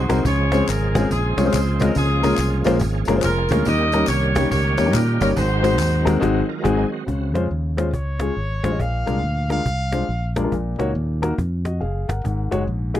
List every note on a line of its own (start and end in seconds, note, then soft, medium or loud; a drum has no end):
0.00 0.24 F#3 medium
0.00 0.23 G#3 medium
0.00 0.24 C4 medium
0.00 0.23 D#4 medium
0.00 0.24 D#4 medium
0.00 0.23 F#4 medium
0.00 0.23 G#4 medium
0.00 0.23 C5 medium
0.09 0.23 C2 loud
0.09 0.19 G#3 medium
0.09 0.19 C4 medium
0.09 0.20 D#4 medium
0.09 0.19 F#4 medium
0.09 0.19 A#4 medium
0.09 cajon bass medium
0.09 cajon slap loud
0.09 tambourine medium
0.24 0.61 C#2 loud
0.24 1.92 C#3 medium
0.24 0.91 C#3 medium
0.24 1.92 F3 medium
0.24 1.92 G#3 medium
0.24 0.68 F4 medium
0.24 1.92 G#4 medium
0.24 1.07 G#4 medium
0.24 0.68 C#5 loud
0.24 cajon bass loud
0.24 tambourine medium
0.52 0.62 G#3 medium
0.52 0.62 C4 medium
0.52 0.62 C#4 medium
0.52 0.62 F4 medium
0.52 0.63 C5 medium
0.52 cajon slap medium
0.52 tambourine medium
0.68 1.04 G#1 medium
0.68 1.10 F4 medium
0.68 1.11 A#4 medium
0.68 clap medium
0.68 tambourine medium
0.95 1.05 G#3 medium
0.95 1.05 C4 medium
0.95 1.05 C#4 medium
0.95 1.05 F4 medium
0.95 1.05 G#4 medium
0.95 cajon bass loud
0.95 cajon slap loud
0.95 tambourine medium
1.11 1.34 A#1 loud
1.11 1.92 C4 medium
1.11 1.46 F4 medium
1.11 1.45 G#4 medium
1.11 cajon bass loud
1.11 tambourine medium
1.37 1.51 C2 medium
1.37 1.42 G#3 medium
1.37 1.43 C4 medium
1.37 1.42 C#4 medium
1.37 1.43 F4 medium
1.37 1.43 C#5 medium
1.37 cajon slap loud
1.37 tambourine medium
1.45 1.57 G#3 medium
1.45 1.57 C4 medium
1.45 1.57 C#4 medium
1.45 1.57 F4 medium
1.45 1.93 F4 medium
1.45 1.93 G#4 medium
1.45 1.57 C5 medium
1.45 1.81 C5 medium
1.53 1.90 C#2 medium
1.53 cajon bass medium
1.53 clap medium
1.53 tambourine loud
1.80 1.90 G#3 medium
1.80 1.90 C4 medium
1.80 1.90 C#4 medium
1.80 1.90 F4 medium
1.80 1.97 A#4 medium
1.80 1.91 D#5 medium
1.80 cajon bass loud
1.80 cajon slap loud
1.80 tambourine medium
1.95 2.32 C#2 loud
1.95 2.61 C#3 medium
1.95 3.64 F3 medium
1.95 3.63 G#3 medium
1.95 3.64 A#3 medium
1.95 2.03 C4 soft
1.95 2.78 F4 medium
1.95 3.64 G#4 medium
1.95 2.63 G#4 medium
1.95 cajon bass loud
1.95 tambourine medium
2.02 3.65 C#4 medium
2.23 2.33 G#3 medium
2.23 2.33 A#3 medium
2.23 2.33 C#4 medium
2.23 2.33 F4 medium
2.23 2.33 A#4 medium
2.23 cajon slap medium
2.23 tambourine medium
2.38 2.61 C2 loud
2.38 clap medium
2.38 tambourine medium
2.64 2.79 A#1 medium
2.64 2.75 G#3 medium
2.64 2.75 A#3 medium
2.64 2.76 C#4 medium
2.64 2.75 F4 medium
2.64 2.75 C5 loud
2.64 cajon bass medium
2.64 cajon slap loud
2.64 tambourine medium
2.79 3.04 G#1 loud
2.79 cajon bass loud
2.79 tambourine medium
3.05 3.21 F#1 medium
3.05 3.13 G#3 medium
3.05 3.13 A#3 medium
3.05 3.13 C#4 medium
3.05 3.13 F4 medium
3.05 3.13 A#4 loud
3.05 cajon slap loud
3.05 tambourine medium
3.16 3.27 G#3 medium
3.16 3.27 A#3 medium
3.16 3.28 C#4 medium
3.16 3.28 F4 medium
3.16 3.28 C5 medium
3.22 3.47 F1 loud
3.22 3.64 F4 medium
3.22 3.64 A#4 medium
3.22 cajon bass medium
3.22 clap medium
3.22 tambourine medium
3.49 3.64 D2 loud
3.49 3.61 G#3 medium
3.49 3.61 A#3 medium
3.49 3.61 C#4 medium
3.49 3.61 F4 medium
3.49 3.61 C#5 medium
3.49 cajon bass loud
3.49 cajon slap loud
3.49 tambourine medium
3.65 4.03 D#2 loud
3.65 5.33 D#3 medium
3.65 4.32 D#3 medium
3.65 5.33 G3 medium
3.65 5.33 A#3 medium
3.65 5.33 C#4 medium
3.65 5.33 G4 medium
3.65 4.08 G4 medium
3.65 4.08 A#4 medium
3.65 4.09 D#5 loud
3.65 cajon bass loud
3.65 tambourine medium
3.92 4.03 G3 medium
3.92 4.04 A#3 medium
3.92 4.03 C#4 medium
3.92 4.03 D#4 medium
3.92 4.04 A#4 medium
3.92 cajon slap loud
3.92 tambourine medium
4.07 4.45 C2 loud
4.07 4.50 G4 medium
4.07 4.50 A#4 medium
4.07 4.50 C#5 loud
4.07 clap medium
4.07 tambourine medium
4.35 4.46 G3 medium
4.35 4.46 A#3 medium
4.35 4.46 C#4 medium
4.35 4.46 D#4 medium
4.35 4.46 G4 medium
4.35 cajon bass loud
4.35 cajon slap loud
4.35 tambourine medium
4.51 4.75 C#2 medium
4.51 5.33 G4 medium
4.51 4.93 A#4 medium
4.51 4.91 C#5 medium
4.51 cajon bass loud
4.51 tambourine medium
4.77 4.94 D#2 medium
4.77 4.83 G3 medium
4.77 4.83 A#3 medium
4.77 4.83 C#4 medium
4.77 4.83 D#4 medium
4.77 4.83 C#5 medium
4.77 cajon slap loud
4.77 tambourine medium
4.86 4.98 G3 medium
4.86 4.98 A#3 medium
4.86 4.98 C#4 medium
4.86 4.98 D#4 medium
4.86 4.98 A#4 medium
4.94 5.17 A#2 medium
4.94 5.21 A#4 medium
4.94 cajon bass medium
4.94 clap loud
4.94 tambourine medium
5.21 5.34 G1 medium
5.21 5.31 G3 medium
5.21 5.31 A#3 medium
5.21 5.31 C#4 medium
5.21 5.31 D#4 medium
5.21 5.29 A#4 medium
5.21 5.31 C#5 medium
5.21 cajon bass medium
5.21 cajon slap loud
5.21 tambourine medium
5.36 5.80 G#1 loud
5.36 6.02 G#2 medium
5.36 7.04 D#3 medium
5.36 7.04 F#3 medium
5.36 7.04 G#3 medium
5.36 5.43 B3 medium
5.36 6.19 D#4 medium
5.36 6.47 F#4 medium
5.36 6.19 F#4 medium
5.36 6.19 C5 medium
5.36 cajon bass loud
5.36 tambourine medium
5.41 6.49 C4 medium
5.62 5.73 G#3 medium
5.62 5.73 C4 medium
5.62 5.73 D#4 medium
5.62 5.73 F#4 medium
5.62 5.73 C5 medium
5.62 cajon slap loud
5.62 tambourine medium
5.79 6.16 D#2 loud
5.79 clap medium
5.79 tambourine loud
6.05 6.16 G#3 medium
6.05 6.16 C4 medium
6.05 6.16 D#4 medium
6.05 6.16 F#4 medium
6.05 6.16 A#4 medium
6.05 cajon bass medium
6.05 cajon slap loud
6.05 tambourine medium
6.21 6.41 G#1 loud
6.21 6.40 G#3 loud
6.21 6.40 C4 medium
6.21 6.40 D#4 loud
6.21 6.40 F#4 medium
6.21 cajon bass loud
6.21 cajon slap loud
6.49 6.64 F4 medium
6.49 6.64 A#4 medium
6.63 6.83 G#1 loud
6.63 6.82 G#3 medium
6.63 6.83 C4 medium
6.63 6.83 D#4 medium
6.63 6.91 D#4 medium
6.63 6.83 F#4 medium
6.63 6.83 G#4 medium
6.63 6.90 G#4 medium
6.63 cajon bass loud
6.63 cajon slap loud
6.92 7.33 C4 medium
6.92 7.33 F#4 medium
7.06 7.35 C#2 medium
7.06 7.73 C#3 medium
7.06 cajon bass medium
7.34 7.48 F2 medium
7.34 7.45 G#3 medium
7.34 7.45 C#4 medium
7.34 7.45 F4 medium
7.34 7.45 C5 medium
7.34 cajon slap medium
7.51 7.93 D#2 medium
7.51 cajon slap soft
7.77 7.88 G#3 medium
7.77 7.88 C#4 medium
7.77 7.88 F4 medium
7.77 7.88 C5 medium
7.77 cajon slap loud
7.93 8.30 C#2 medium
7.93 8.82 C#5 medium
7.93 cajon bass loud
8.20 8.31 G#3 medium
8.20 8.31 C#4 medium
8.20 8.31 F4 medium
8.20 8.31 G#4 medium
8.20 cajon slap loud
8.37 8.60 G#1 medium
8.63 8.77 A1 medium
8.63 8.69 G#3 medium
8.63 8.69 C#4 medium
8.63 8.69 F4 medium
8.63 8.69 C5 medium
8.63 cajon bass medium
8.63 cajon slap loud
8.71 8.79 G#3 medium
8.71 8.79 C#4 medium
8.71 8.79 F4 soft
8.71 8.80 D#5 medium
8.79 9.03 A#1 medium
8.79 9.46 A#2 medium
8.79 9.51 F5 medium
8.79 cajon bass medium
9.06 9.21 C2 medium
9.06 9.17 G#3 medium
9.06 9.17 D4 medium
9.06 9.17 F4 medium
9.06 9.17 A#4 medium
9.06 cajon slap medium
9.23 9.59 D2 medium
9.50 9.60 G#3 medium
9.50 9.60 D4 medium
9.50 9.60 F4 medium
9.50 9.60 A#4 medium
9.50 10.33 F5 medium
9.50 cajon slap medium
9.66 10.02 C2 medium
9.66 cajon bass loud
9.92 10.03 G#3 medium
9.92 10.03 D4 medium
9.92 10.03 F4 medium
9.92 10.03 C5 medium
9.92 cajon slap loud
10.08 10.45 A#1 medium
10.08 cajon slap soft
10.36 10.41 G#3 medium
10.36 10.41 D4 medium
10.36 10.41 F4 medium
10.36 10.42 A#4 medium
10.36 cajon bass medium
10.36 cajon slap loud
10.44 10.52 G#3 medium
10.44 10.52 D4 medium
10.44 10.52 F4 medium
10.44 10.52 A#4 medium
10.51 10.75 A#1 loud
10.51 11.18 A#2 medium
10.51 cajon bass medium
10.79 10.93 C#2 medium
10.79 10.89 A#3 medium
10.79 10.89 D#4 medium
10.79 10.89 F#4 medium
10.79 10.89 C#5 medium
10.79 cajon slap medium
10.95 11.32 D#2 medium
10.95 cajon slap soft
11.22 11.32 A#3 medium
11.22 11.32 D#4 medium
11.22 11.32 F#4 medium
11.22 11.33 A#4 medium
11.22 cajon slap medium
11.38 11.83 F2 medium
11.38 cajon bass medium
11.65 11.81 F#4 soft
11.65 11.80 D#5 medium
11.65 cajon slap medium
11.80 12.04 F#1 medium
11.80 12.07 G#4 soft
11.80 12.07 F5 medium
11.80 cajon slap soft
12.08 12.22 G1 medium
12.08 12.50 A#4 soft
12.08 12.49 F#5 medium
12.08 cajon bass medium
12.08 cajon slap loud
12.24 12.48 G#1 medium
12.24 12.90 G#2 medium
12.24 cajon bass medium
12.51 12.65 F#1 medium
12.51 12.62 G#3 medium
12.51 12.61 D#4 medium
12.51 12.61 F#4 medium
12.51 12.62 C#5 medium
12.51 cajon slap medium
12.67 13.00 A#1 medium
12.67 cajon slap soft
12.94 13.00 G#3 medium
12.94 13.00 D#4 medium
12.94 13.00 F#4 medium
12.94 13.00 G#4 medium
12.94 cajon slap loud